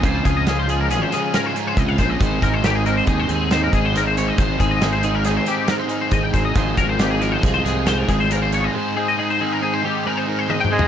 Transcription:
<<
  \new Staff \with { instrumentName = "Clean electric guitar" } { \time 5/4 \key aes \major \tempo 4 = 138 c''8 aes'16 ees''16 aes'16 c''16 aes'16 bes'16 aes'16 c''16 aes'8 bes'16 c''16 bes'16 c''16 ees''16 f''16 c''16 ees''16 | c''8 bes'16 c''16 g'16 aes'16 bes'16 c''16 aes'16 c''16 aes'8 c''16 bes'16 aes'16 c''16 bes'16 c''16 des''16 ees''16 | c''8 aes'16 ees''16 aes'16 c''16 aes'16 bes'16 aes'16 c''16 g'8 bes'16 c''16 bes'16 c''16 ees''16 g''16 c''16 ees''16 | c''8 bes'16 c''16 g'16 aes'16 bes'16 c''16 aes'16 c''16 aes'8 c''16 bes'16 aes'16 c''16 bes'16 c''16 des''16 ees''16 |
c''8 aes'16 ees''16 aes'16 c''16 aes'16 bes'16 aes'16 c''16 g'8 bes'16 c''16 bes'16 c''16 ees''16 g''16 c''16 ees''16 | }
  \new Staff \with { instrumentName = "Overdriven electric guitar" } { \time 5/4 \key aes \major <des aes des' f' aes'>8 <des' f' aes'>8 <des aes des' f' aes'>8 <des' f' aes'>8 <aes des' f' aes'>8 <des aes des' f' aes'>8 <aes des' f' aes'>8 <des' f' aes'>8 <des aes des' f' aes'>8 <des' f' aes'>8 | <aes c' ees' aes'>8 <c' ees' aes'>8 <aes c' ees' aes'>8 <c' ees' aes'>8 <aes c' ees' aes'>8 <aes c' ees' aes'>8 <aes c' ees' aes'>8 <c' ees' aes'>8 <aes c' ees' aes'>8 <c' ees' aes'>8 | <aes c' ees' aes'>8 <c' ees' aes'>8 <aes c' ees' aes'>8 <c' ees' aes'>8 <aes c' ees' aes'>8 <aes c' ees' aes'>8 <aes c' ees' aes'>8 <c' ees' aes'>8 <aes c' ees' aes'>8 <c' ees' aes'>8 | <aes c' f' aes'>8 <c' f' aes'>8 <aes c' f' aes'>8 <c' f' aes'>8 <aes c' f' aes'>8 <aes c' f' aes'>8 <aes c' f' aes'>8 <c' f' aes'>8 <aes c' f' aes'>8 <c' f' aes'>8 |
<aes c' ees' aes'>8 <c' ees' aes'>8 <aes c' ees' aes'>8 <c' ees' aes'>8 <aes c' ees' aes'>8 <aes c' ees' aes'>8 <aes c' ees' aes'>8 <c' ees' aes'>8 <aes c' ees' aes'>8 <c' ees' aes'>8 | }
  \new Staff \with { instrumentName = "Clean electric guitar" } { \time 5/4 \key aes \major << { <f c' des' f'>4 des'4 des'4 des'2 | r8 c'8 ees'8 c'8 ees'8 c'8 ees'4. c'8 | r8 c'8 ees'8 c'8 ees'8 c'8 c'16 ees'4~ ees'16 c'8 | <f aes ees' aes'>8 aes8 ees'8 aes8 ees'8 aes8 ees'4. aes8~ |
aes8 c'8 ees'8 c'8 c'16 ees'16 c'8 ees'4. c'8 | } \\ { des4. f4. aes,4 c8 bes,8 | aes,4. ees4. aes,4 aes,4 | aes,4. ees4. aes,4 aes,4 | aes,4. f4. aes,4 aes,4 |
aes,4. ees4. aes,4 aes,4 | } >> }
  \new Staff \with { instrumentName = "Trumpet" } { \clef bass \time 5/4 \key aes \major r1 r4 | r1 r4 | r1 r4 | r1 r4 |
r1 r8 aes8 | }
  \new Staff \with { instrumentName = "Fingered electric bass" } { \clef bass \time 5/4 \key aes \major des,8 des,2 r4. des,8 bes,,8 | aes,,8 aes,,4. ees,8 ees,4 aes,,4. | aes,,8 aes,,2 r4. aes,,8 aes,,8 | aes,,8 aes,,4. c,8 c,4 aes,,4. |
r1 r4 | }
  \new DrumStaff \with { instrumentName = "Drums" } \drummode { \time 5/4 <hh bd>8 <hh bd>8 <hh sn>8 hh8 hh8 <hh sn>8 <hh sn>8 hh8 <hh bd>8 <hh bd sn>8 | <hh bd>8 <hh bd>8 <hh sn>8 hh8 <hh bd>8 hh8 <hh sn>8 <hh bd>8 <hh sn>8 hh8 | <hh bd>8 <hh bd>8 <hh sn>8 hh8 <hh sn>8 hh8 <hh sn>8 hh8 <hh bd sn>8 <hh bd>8 | <hh bd>8 <hh bd>8 <hh sn>8 hh8 <hh bd sn>8 <hh sn>8 <hh sn>8 <hh bd>8 hh8 hh8 |
r4 r4 r4 r4 \tuplet 3/2 { tommh8 toml8 tomfh8 } | }
>>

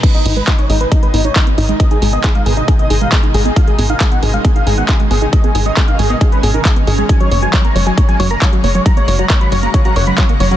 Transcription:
<<
  \new Staff \with { instrumentName = "Supersaw synth" } { \time 4/4 \key gis \minor \tempo 4 = 136 b'16 dis'16 dis'16 b'16 dis'16 cis''16 dis'16 b'16 dis'16 b'16 dis'16 cis''16 dis'16 r16 dis'16 dis'16 | dis''16 gis'16 gis'16 dis''16 gis'16 eis''16 gis'16 dis''16 gis'16 dis''16 gis'16 eis''16 gis'16 r16 gis'16 gis'16 | eis''16 gis'16 gis'16 eis''16 gis'16 fis''16 gis'16 eis''16 gis'16 eis''16 gis'16 fis''16 gis'16 r16 gis'16 gis'16 | dis''16 gis'16 gis'16 dis''16 gis'16 eis''16 gis'16 dis''16 gis'16 b'16 gis'16 ais'16 gis'16 r16 gis'16 gis'16 |
gis''16 cis''16 cis''16 gis''16 cis''16 ais''16 cis''16 gis''16 cis''16 gis''16 cis''16 ais''16 cis''16 r16 cis''16 cis''16 | ais''16 cis''16 cis''16 ais''16 cis''16 b''16 cis''16 ais''16 cis''16 ais''16 cis''16 b''16 cis''16 r16 cis''16 cis''16 | }
  \new Staff \with { instrumentName = "Synth arpeggio sound" } { \time 4/4 \key gis \minor gis16 b16 dis'16 gis16 r16 dis'16 gis16 b16 dis'16 gis16 b16 dis'16 gis16 b16 dis'16 gis16 | b16 dis'16 gis16 b16 dis'16 gis16 b16 dis'16 gis16 b16 dis'16 gis16 b16 dis'16 gis16 b16 | dis'16 gis16 b16 dis'16 gis16 b16 dis'16 gis16 b16 dis'16 gis16 b16 dis'16 gis16 b16 dis'16 | gis16 b16 dis'16 gis16 b16 dis'16 gis16 b16 dis'16 gis16 b16 dis'16 gis16 b16 dis'16 gis16 |
fis16 fis16 ais16 fis16 fis16 ais16 fis16 fis16 ais16 fis16 fis16 ais16 fis16 fis16 ais16 fis16 | fis16 ais16 fis16 fis16 ais16 fis16 fis16 ais16 fis16 fis16 ais16 fis16 fis16 ais16 fis16 fis16 | }
  \new Staff \with { instrumentName = "Analog synth bass" } { \clef bass \time 4/4 \key gis \minor r8 gis,,8 r8 gis,,8 r8 gis,,8 r8 gis,,8 | r8 gis,,8 r8 gis,,8 r8 gis,,8 r8 gis,,8 | r8 gis,,8 r8 gis,,8 r8 gis,,8 r8 gis,,8 | r8 gis,,8 r8 gis,,8 r8 gis,,8 r8 gis,,8 |
r8 fis,,8 r8 fis,,8 r8 fis,,8 r8 fis,,8 | r8 fis,,8 r8 fis,,8 r8 fis,,8 r8 fis,,8 | }
  \new DrumStaff \with { instrumentName = "Drums" } \drummode { \time 4/4 <cymc hh bd>16 hh16 hho16 hh16 <hc hh bd>16 hh16 hho16 hh16 <hh bd>16 hh16 hho16 hh16 <hc hh bd>16 hh16 hho16 hh16 | <hh bd>16 hh16 hho16 hh16 <hc hh bd>16 hh16 hho16 hh16 <hh bd>16 hh16 hho16 hh16 <hc hh bd>16 hh16 hho16 hh16 | <hh bd>16 hh16 hho16 hh16 <hc hh bd>16 hh16 hho16 hh16 <hh bd>16 hh16 hho16 hh16 <hc hh bd>16 hh16 hho16 hh16 | <hh bd>16 hh16 hho16 hh16 <hc hh bd>16 hh16 hho16 hh16 <hh bd>16 hh16 hho16 hh16 <hc hh bd>16 hh16 hho16 hh16 |
<hh bd>16 hh16 hho16 hh16 <hc hh bd>16 hh16 hho16 hh16 <hh bd>16 hh16 hho16 hh16 <hc hh bd>16 hh16 hho16 hh16 | <hh bd>16 hh16 hho16 hh16 <hc hh bd>16 hh16 hho16 hh16 <hh bd>16 hh16 hho16 hh16 <hc hh bd>16 hh16 hho16 hh16 | }
>>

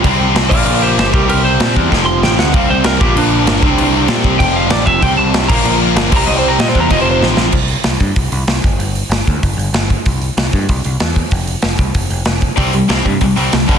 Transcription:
<<
  \new Staff \with { instrumentName = "Lead electric guitar" } { \time 4/4 \key f \major \tempo 4 = 191 r4. <d'' f''>8 <d'' f''>8 <g' c''>8 <g' c''>8 <g' bes'>8 | <g' bes'>8 c''4 r4 c'''8 g''8 fis''8 | f''8 c''8 bes'8 g'8 d'2~ | d'4 r4 g''8 f''8 d''8 e''8 |
g''8 a''4 bes''4 r8 \tuplet 3/2 { r4 bes''8 } | \tuplet 3/2 { ees''8 c''8 bes''8 ees''8 c''8 bes''8 ees''8 c''8 c''8 } r4 | \key c \major r1 | r1 |
r1 | r1 | r1 | }
  \new Staff \with { instrumentName = "Distorted electric guitar" } { \clef bass \time 4/4 \key f \major <c g c'>4. <bes, f bes>2 <c g c'>8~ | <c g c'>2 <f, c f>2 | <c g c'>4. <bes, f bes>2 <c g c'>8~ | <c g c'>2 <f, c f>2 |
<c g c'>4. <bes, f bes>2 <c g c'>8~ | <c g c'>2 <f, c f>2 | \key c \major r1 | r1 |
r1 | r1 | <c g c'>8 <c g>8 <c g c'>8 <c g>8 <c g>8 <c g c'>8 <c g>8 <g, d g>8 | }
  \new Staff \with { instrumentName = "Overdriven electric guitar" } { \clef bass \time 4/4 \key f \major <c g c'>4. <bes, f bes>2 <c g c'>8~ | <c g c'>2 <f, c f>2 | <c g c'>4. <bes, f bes>2 <c g c'>8~ | <c g c'>2 <f, c f>2 |
<c g c'>4. <bes, f bes>2 <c g c'>8~ | <c g c'>2 <f, c f>2 | \key c \major r1 | r1 |
r1 | r1 | <c g c'>8 <c g>8 <c g c'>8 <c g>8 <c g>8 <c g c'>8 <c g>8 <g, d g>8 | }
  \new Staff \with { instrumentName = "Picked electric bass" } { \clef bass \time 4/4 \key f \major c,8 c,8 c,8 bes,,8 bes,,4 g,,8 c,8 | c,4 bes,8 e,8 f,,4 a,,8 d,8 | c,8 c,8 c,8 bes,,8 bes,,4 g,,8 c,8 | c,4 bes,8 c,8 f,,4 a,,8 f,,8 |
c,8 c,8 c,8 bes,,8 bes,,4 g,,8 c,8 | c,4 bes,8 e,8 f,,4 a,,8 bes,,8 | \key c \major c,4 c,8 g,8 c,8 c,8 c,8 g,,8 | g,,4 g,,8 d,8 g,,8 g,,8 g,,4 |
c,4 c,8 g,8 c,8 c,8 e,4 | f,,4 f,,8 c,8 f,,8 f,,8 f,,4 | c,4 c,8 g,8 c,8 c,8 c,8 g,,8 | }
  \new DrumStaff \with { instrumentName = "Drums" } \drummode { \time 4/4 <cymc bd>4 <cymc sn>8 <cymc bd>8 cymc4 <cymc sn>8 bd8 | cymc4 <cymc sn>8 bd8 <bd sn>4 sn8 sn8 | <cymc bd>4 <cymc sn>8 bd8 cymc4 <cymc sn>8 bd8 | cymc4 <cymc sn>8 bd8 <cymc bd>4 <cymc sn>8 bd8 |
<cymc bd>4 <cymc sn>8 <cymc bd>8 cymc4 <cymc sn>8 <cymc bd>8 | cymc4 <cymc sn>8 bd8 <cymc bd>4 sn8 sn8 | <cymc bd>8 hho8 <hho sn>8 <hho bd>8 <hho bd>8 hho8 <hho sn>8 <hho bd>8 | hho8 hho8 <hho sn>8 <hho bd>8 <hho bd>8 hho8 <hho sn>8 <hho bd>8 |
<hho bd>8 hho8 <hho sn>8 <hho bd>8 <hho bd>8 hho8 <hho sn>8 <hho bd>8 | <hho bd>8 hho8 <hho sn>8 <hho bd>8 <hho bd>8 hho8 <hho sn>8 <hho bd>8 | <hho bd>8 hho8 <hho sn>8 <hho bd>8 <hho bd>8 hho8 <hho sn>8 <hho bd>8 | }
>>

